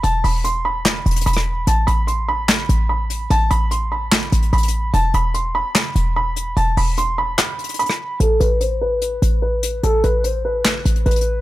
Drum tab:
HH |x-----------o-----------x-----------------------x-----------x--x--x--x--x---x---x---------------|x-----------x-----------x-----------------------x-----------x-----------------------x-----------|x-----------x-----------x-----------------------x-----------x-----x-----x--x--x--x--------------|x-----------x-----------x-----------------------x-----------x-----------------------x-----------|
CP |------------------------------------------------x-----------------------------------------------|------------------------------------------------x-----------------------------------------------|------------------------------------------------x-----------------------------------------------|------------------------------------------------x-----------------------------------------------|
SD |------------------------------------------------o-----------------------------r-----------------|------------------------------------------------o-----------------------------------------------|------------------------------------------------o-----------------------------------------------|------------------------------------------------o-----------------------------------------------|

HH |x-----------o-----------x-----------------------x-----------x--x--x--x--x---x---x---------------|x-----------x-----------x-----------------------x-----------x-----------------------x-----------|x-----------x-----------x-----------------------x-----------x-----x-----x--x--x--x--------------|
CP |------------------------------------------------x-----------------------------------------------|------------------------------------------------------------------------------------------------|------------------------------------------------x-----------------------------------------------|
SD |------------------------------------------------o-----------------------------r-----------------|------------------------------------------------------------------------------------------------|------------------------------------------------o-----------------------------------------------|